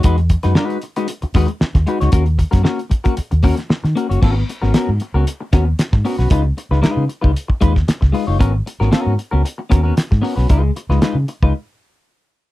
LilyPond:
<<
  \new Staff \with { instrumentName = "Clean electric guitar" } { \time 4/4 \key gis \dorian \tempo 4 = 115 <gis dis' fis' b'>16 r8 <gis dis' fis' b'>16 <gis dis' fis' b'>8 r16 <gis dis' fis' b'>16 r8 <gis dis' fis' b'>16 r8. <gis dis' fis' b'>16 <gis dis' fis' cis''>16 | <ais cis' fis' ais'>16 r8 <ais cis' fis' ais'>16 <ais cis' fis' ais'>16 r8 <ais cis' fis' ais'>16 r8 <ais cis' fis' ais'>16 r8. <ais cis' fis' ais'>16 <ais cis' fis' cis''>16 | <b cis' fis' ais'>8 r16 <b cis' fis' ais'>16 <b cis' fis' ais'>16 r8 <b cis' fis' ais'>16 r8 <b cis' fis' ais'>16 r8. <b cis' fis' ais'>16 <b cis' fis' b'>16 | <gis dis' eis' b'>16 r8 <gis dis' eis' b'>16 <gis dis' eis' b'>8 r16 <gis dis' eis' b'>16 r8 <gis dis' eis' b'>16 r8. <gis dis' eis' b'>16 <gis dis' eis' cis''>16 |
<b cis' fis' ais'>16 r8 <b cis' fis' ais'>16 <b cis' fis' ais'>8 r16 <b cis' fis' ais'>16 r8 <b cis' fis' ais'>16 <b cis' fis' ais'>16 r8 <b cis' fis' ais'>16 <b cis' fis' b'>16 | <gis dis' eis' b'>8 r16 <gis dis' eis' b'>16 <gis dis' eis' b'>16 r8 <gis dis' eis' b'>16 r2 | }
  \new Staff \with { instrumentName = "Fingered electric bass" } { \clef bass \time 4/4 \key gis \dorian e,8. fis,16 r4. dis,16 r8 dis,16 r16 cis,16 | dis,8. fis,16 r4 r16 dis,8 r8 dis16 r16 fis,,16 | gis,,8 r16 gis,,16 r16 gis,16 r16 cis,16 r8 dis,8 r16 gis,16 r16 b,,16 | cis,8 r16 cis,16 r16 cis16 r16 cis,16 r8 dis,8 r16 cis,16 r16 fis,,16 |
gis,,8 r16 gis,,16 r16 gis,16 r16 cis,16 r8 dis,8 r16 gis,16 r16 b,,16 | cis,8 r16 cis,16 r16 cis16 r16 cis,16 r2 | }
  \new DrumStaff \with { instrumentName = "Drums" } \drummode { \time 4/4 <hh bd>16 hh16 <hh bd>16 <hh sn>16 sn16 hh16 hh16 hh16 hh16 hh16 <hho bd sn>16 hh16 sn16 <hh bd sn>16 hh16 <hh sn>16 | <hh bd>16 hh16 <hh bd>16 <hh bd sn>16 sn16 hh16 <hh bd>16 <hh bd>16 hh16 hh16 <hho bd>16 <hh sn>16 sn16 <hh sn>16 hh16 hh16 | <cymc bd>8 hh16 sn16 <hh sn>8 hh8 hh8 <hh bd sn>8 <hh sn>16 <bd sn>16 hho16 sn16 | <hh bd>8 hh16 sn16 <hh sn>8 hh16 bd16 hh16 bd16 <hh bd>16 <bd sn>16 <hh sn>16 <bd sn>16 hho8 |
<hh bd>8 hh16 sn16 <hh sn>8 hh8 hh8 <hh bd sn>8 <hh sn>16 <bd sn>16 hho16 sn16 | <hh bd>8 hh16 sn16 <hh sn>8 hh16 bd16 r4 r4 | }
>>